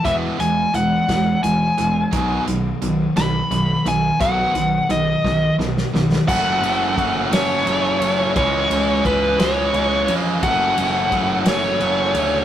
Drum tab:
CC |------------|------------|------------|x-----------|
RD |------------|------------|------------|--x-x-x-x-x-|
HH |x-x-x-x-x-x-|x-x-x-x-x-x-|x-x-x-------|------------|
SD |------o-----|------o-----|------o-oooo|------o-----|
BD |o-----o-----|o-----------|o-----o-----|o---o-------|

CC |------------|------------|
RD |x-x-x-x-x-x-|x-x-x-x-x-x-|
HH |------------|------------|
SD |------o-----|------o-----|
BD |o---o-------|o---o-------|